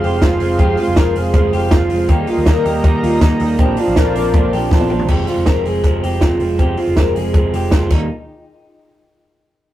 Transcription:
Already playing: analog synth pad G#4 C5 F5 C6
0.02 picked electric bass F1, clean electric guitar G#3 C4 F4 G4, open hi-hat
0.20 picked electric bass F1, clean electric guitar F3 G#3 C4 F4, kick, snare, closed hi-hat
0.39 picked electric bass F1, clean electric guitar G#3 C4 F4, open hi-hat
0.58 picked electric bass F1, clean electric guitar F3 G#3 C4 F4 G4, kick, closed hi-hat
0.76 clean electric guitar G#3 C4 F4, open hi-hat
0.88 picked electric bass F1
0.95 picked electric bass F1, clean electric guitar F3 G#3 C4 F4 A#4, kick, snare, closed hi-hat
1.14 picked electric bass F1, clean electric guitar G#3 C4 F4 G#4, open hi-hat
1.33 picked electric bass F1, clean electric guitar F3 G#3 C4 F4, kick, closed hi-hat
1.52 picked electric bass F1, clean electric guitar G#3 C4 F4 G4, open hi-hat
1.71 picked electric bass F1, clean electric guitar F3 G#3 C4 F4, kick, snare, closed hi-hat
1.89 picked electric bass F1, clean electric guitar G#3 C4 F4, open hi-hat
2.08 picked electric bass D#2, clean electric guitar D#3 G3 A#3 D#4 G4, analog synth pad G4 A#4 D#5 A#5, kick, closed hi-hat
2.27 clean electric guitar G3 A#3 D#4 F4, open hi-hat
2.38 picked electric bass D#2
2.45 picked electric bass D#2, clean electric guitar D#3 G3 A#3 D#4 A#4, kick, snare, closed hi-hat
2.64 picked electric bass D#2, clean electric guitar G3 A#3 D#4 G4, open hi-hat
2.83 picked electric bass D#2, clean electric guitar D#3 G3 A#3 D#4, kick, closed hi-hat
3.02 picked electric bass D#2, clean electric guitar G3 A#3 D#4 F4, open hi-hat
3.21 picked electric bass D#2, clean electric guitar D#3 G3 A#3 D#4, kick, snare, closed hi-hat
3.40 picked electric bass D#2, clean electric guitar G3 A#3 D#4, open hi-hat
3.58 picked electric bass A#1, clean electric guitar A#2 D3 F3 C4 D4 G4, analog synth pad F4 C5 D5, kick, closed hi-hat
3.77 clean electric guitar F3 C4 D4 F4, open hi-hat
3.88 picked electric bass A#1
3.95 clean electric guitar D3 F3 C4 D4 A#4, kick, snare, closed hi-hat
4.14 picked electric bass A#1, clean electric guitar F3 C4 D4 A#4, open hi-hat
4.33 picked electric bass A#1, clean electric guitar A#2 D3 F3 C4 D4, kick, closed hi-hat
4.52 picked electric bass A#1, clean electric guitar F3 C4 D4 G4, open hi-hat
4.71 picked electric bass A#1, clean electric guitar D3 F3 C4 D4 F4, kick, snare
4.81 high tom
4.89 picked electric bass A#1, clean electric guitar F3 C4 D4, mid tom
4.99 floor tom
5.07 picked electric bass F1, clean electric guitar F2 C3 F3 G#3 C4 G4, kick, crash
5.26 clean electric guitar F3 G#3 C4 F4, open hi-hat
5.37 picked electric bass F1
5.45 picked electric bass F1, clean electric guitar F2 C3 F3 G#3 C4 A#4, kick, snare, closed hi-hat
5.64 picked electric bass F1, clean electric guitar F3 G#3 C4 G#4, open hi-hat
5.83 picked electric bass F1, clean electric guitar C3 F3 G#3 C4, kick, closed hi-hat
6.02 picked electric bass F1, clean electric guitar F3 G#3 C4 G4, open hi-hat
6.20 picked electric bass F1, clean electric guitar F2 C3 F3 G#3 C4 F4, kick, snare, closed hi-hat
6.39 picked electric bass F1, clean electric guitar F3 G#3 C4, open hi-hat
6.58 picked electric bass F1, clean electric guitar F2 C3 F3 G#3 C4 G4, kick, closed hi-hat
6.77 clean electric guitar F3 G#3 C4 F4, open hi-hat
6.87 picked electric bass F1
6.96 picked electric bass F1, clean electric guitar F2 C3 F3 G#3 C4 A#4, kick, snare, closed hi-hat
7.15 picked electric bass F1, clean electric guitar F3 G#3 C4 G#4, open hi-hat
7.33 picked electric bass F1, clean electric guitar C3 F3 G#3 C4, kick, closed hi-hat
7.52 picked electric bass F1, clean electric guitar F3 G#3 C4 G4, open hi-hat
7.71 picked electric bass F1, clean electric guitar F2 C3 F3 G#3 C4 F4, kick, snare, closed hi-hat
7.90 picked electric bass D#2, clean electric guitar D#3 G3 A#3 D#4, kick, crash

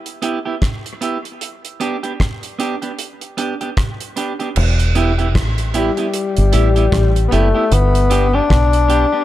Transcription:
0.06 closed hi-hat
0.22 clean electric guitar B3 E4 G4, closed hi-hat
0.45 clean electric guitar B3 E4 G4
0.62 kick, cross-stick, closed hi-hat
0.86 closed hi-hat
1.01 clean electric guitar B3 E4 G4, closed hi-hat
1.25 closed hi-hat
1.41 closed hi-hat
1.65 closed hi-hat
1.80 clean electric guitar B3 D4 G4, closed hi-hat
2.03 clean electric guitar B3 D4 G4, closed hi-hat
2.20 kick, cross-stick, closed hi-hat
2.43 closed hi-hat
2.59 clean electric guitar B3 D4 G4, closed hi-hat
2.82 clean electric guitar B3 D4 G4, closed hi-hat
2.99 closed hi-hat
3.21 closed hi-hat
3.37 clean electric guitar B3 D4 G4, closed hi-hat
3.61 clean electric guitar B3 D4 G4, closed hi-hat
3.77 kick, cross-stick, closed hi-hat
4.00 closed hi-hat
4.16 clean electric guitar B3 D4 G4, closed hi-hat
4.39 clean electric guitar B3 D4 G4, closed hi-hat
4.56 fingered electric bass E1, crash
4.79 closed hi-hat
4.95 clean electric guitar B3 E4 G4, closed hi-hat
5.18 clean electric guitar B3 E4 G4, closed hi-hat
5.35 fingered electric bass A1, kick, cross-stick, closed hi-hat
5.58 closed hi-hat
5.74 tenor saxophone G3, clean electric guitar B3 E4 G4, closed hi-hat
5.97 clean electric guitar B3 E4 G4, closed hi-hat
6.14 closed hi-hat
6.37 fingered electric bass G1, closed hi-hat
6.52 fingered electric bass A1, clean electric guitar B3 E4 G4, closed hi-hat
6.76 clean electric guitar B3 E4 G4, closed hi-hat
6.92 fingered electric bass A1, kick, cross-stick, closed hi-hat
7.16 closed hi-hat
7.28 tenor saxophone B3, clean electric guitar B3
7.32 fingered electric bass F#1, tenor saxophone A3, clean electric guitar E4 G4, closed hi-hat
7.54 clean electric guitar B3 E4 G4
7.72 fingered electric bass G1, tenor saxophone B3, closed hi-hat
7.95 closed hi-hat
8.10 clean electric guitar B3 D4 G4, closed hi-hat
8.33 clean electric guitar B3 D4 G4, tenor saxophone D4
8.50 fingered electric bass B1, kick, cross-stick, closed hi-hat
8.73 closed hi-hat
8.88 clean electric guitar B3 D4 G4, closed hi-hat
9.12 clean electric guitar B3 D4 G4

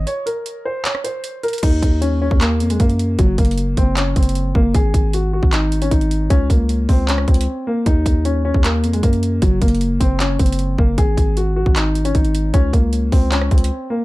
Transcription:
0.07 grand piano C#5, closed hi-hat
0.26 grand piano A#4, closed hi-hat
0.46 closed hi-hat
0.65 grand piano C5
0.85 grand piano C#5, clap, closed hi-hat
0.95 cross-stick
1.04 grand piano C5, closed hi-hat
1.24 closed hi-hat
1.43 grand piano A#4, closed hi-hat
1.48 closed hi-hat
1.53 closed hi-hat
1.58 closed hi-hat
1.63 808-style bass D#2, grand piano D#4, kick, closed hi-hat, crash
1.82 808-style bass D#2, kick, closed hi-hat
2.01 grand piano C#4, closed hi-hat
2.22 grand piano C#4
2.31 808-style bass D#2, kick
2.41 grand piano A#3, clap, closed hi-hat
2.60 808-style bass F2, closed hi-hat
2.70 grand piano G#3, closed hi-hat
2.80 808-style bass F#2, grand piano A#3, kick, closed hi-hat
2.90 closed hi-hat
2.99 closed hi-hat
3.19 808-style bass F#1, grand piano F#3, kick, closed hi-hat
3.38 808-style bass F#1, grand piano A#3, kick, closed hi-hat
3.45 closed hi-hat
3.51 closed hi-hat
3.58 closed hi-hat
3.77 808-style bass F#1, grand piano C4, kick, closed hi-hat
3.97 grand piano C#4, clap, closed hi-hat
4.16 808-style bass F#1, grand piano C4, kick, closed hi-hat
4.23 closed hi-hat
4.29 closed hi-hat
4.35 closed hi-hat
4.55 808-style bass F#1, grand piano A#3, kick
4.74 808-style bass G#1, grand piano G#4, kick, closed hi-hat
4.94 808-style bass G#1, kick, closed hi-hat
5.13 grand piano F#4, closed hi-hat
5.33 grand piano F#4
5.43 808-style bass G#1, kick
5.53 grand piano D#4, clap, closed hi-hat
5.72 closed hi-hat
5.82 grand piano C#4, closed hi-hat
5.91 808-style bass G#1, grand piano D#4, kick, closed hi-hat
6.01 closed hi-hat
6.11 closed hi-hat
6.30 808-style bass C#2, grand piano C#4, kick, closed hi-hat
6.50 808-style bass C#2, grand piano A#3, kick, closed hi-hat
6.69 closed hi-hat
6.89 808-style bass C#2, grand piano C4, kick, open hi-hat
7.08 grand piano C#4, clap, closed hi-hat
7.18 cross-stick
7.28 808-style bass C#2, grand piano C4, kick, closed hi-hat
7.34 closed hi-hat
7.41 closed hi-hat
7.67 grand piano A#3
7.86 808-style bass D#2, grand piano D#4, kick, closed hi-hat
8.06 808-style bass D#2, kick, closed hi-hat
8.25 grand piano C#4, closed hi-hat
8.45 grand piano C#4
8.54 808-style bass D#2, kick
8.64 grand piano A#3, clap, closed hi-hat
8.84 808-style bass F2, closed hi-hat
8.93 grand piano G#3, closed hi-hat
9.03 808-style bass F#2, grand piano A#3, kick, closed hi-hat
9.13 closed hi-hat
9.23 closed hi-hat
9.42 808-style bass F#1, grand piano F#3, kick, closed hi-hat
9.62 808-style bass F#1, grand piano A#3, kick, closed hi-hat
9.68 closed hi-hat
9.75 closed hi-hat
9.81 closed hi-hat
10.00 808-style bass F#1, grand piano C4, kick, closed hi-hat
10.20 grand piano C#4, clap, closed hi-hat
10.39 808-style bass F#1, grand piano C4, kick, closed hi-hat
10.46 closed hi-hat
10.52 closed hi-hat
10.59 closed hi-hat
10.78 808-style bass F#1, grand piano A#3, kick
10.98 808-style bass G#1, grand piano G#4, kick, closed hi-hat
11.17 808-style bass G#1, kick, closed hi-hat
11.37 grand piano F#4, closed hi-hat
11.56 grand piano F#4
11.66 808-style bass G#1, kick
11.76 grand piano D#4, clap, closed hi-hat
11.95 closed hi-hat
12.05 grand piano C#4, closed hi-hat
12.15 808-style bass G#1, grand piano D#4, kick, closed hi-hat
12.25 closed hi-hat
12.35 closed hi-hat
12.54 808-style bass C#2, grand piano C#4, kick, closed hi-hat
12.73 808-style bass C#2, grand piano A#3, kick, closed hi-hat
12.93 closed hi-hat
13.12 808-style bass C#2, grand piano C4, kick, open hi-hat
13.32 grand piano C#4, clap, closed hi-hat
13.41 cross-stick
13.51 808-style bass C#2, grand piano C4, kick, closed hi-hat
13.58 closed hi-hat
13.64 closed hi-hat
13.90 grand piano A#3

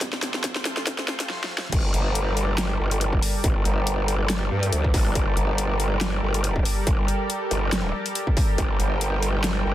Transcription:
Already playing: analog synth pad C3
0.01 analog synth pad F2 A3 F4 C5, kick, snare, closed hi-hat
0.13 snare
0.23 snare, closed hi-hat
0.34 snare
0.44 kick, snare, closed hi-hat
0.56 snare
0.65 snare, closed hi-hat
0.77 snare
0.87 kick, snare, closed hi-hat
0.99 snare
1.08 snare
1.20 snare, closed hi-hat
1.30 snare
1.44 snare
1.58 snare
1.73 wobble bass G1, analog synth pad G3 G4 A4 A#4 D5, kick, closed hi-hat, crash
1.94 wobble bass G1, closed hi-hat
2.15 closed hi-hat
2.37 closed hi-hat
2.58 snare, closed hi-hat
2.80 wobble bass G1
2.91 closed hi-hat
3.01 closed hi-hat
3.13 kick
3.23 open hi-hat
3.44 wobble bass G1, kick, closed hi-hat
3.65 wobble bass G1, closed hi-hat
3.87 closed hi-hat
4.08 closed hi-hat
4.30 snare, closed hi-hat
4.51 wobble bass G2
4.63 closed hi-hat
4.73 wobble bass D2, closed hi-hat
4.84 kick
4.94 wobble bass A1, kick, open hi-hat
5.15 wobble bass G1, kick, closed hi-hat
5.37 wobble bass G1, closed hi-hat
5.58 closed hi-hat
5.80 closed hi-hat
6.01 snare, closed hi-hat
6.23 wobble bass G1
6.34 closed hi-hat
6.44 closed hi-hat
6.56 kick
6.65 open hi-hat
6.87 wobble bass G1, kick, closed hi-hat
7.08 closed hi-hat
7.30 closed hi-hat
7.51 wobble bass G1, closed hi-hat
7.73 snare, closed hi-hat
8.06 closed hi-hat
8.15 closed hi-hat
8.27 kick
8.37 kick, open hi-hat
8.58 wobble bass G1, analog synth pad G5, kick, closed hi-hat
8.80 wobble bass G1, closed hi-hat
9.01 closed hi-hat
9.22 closed hi-hat
9.44 snare, closed hi-hat
9.65 wobble bass G1

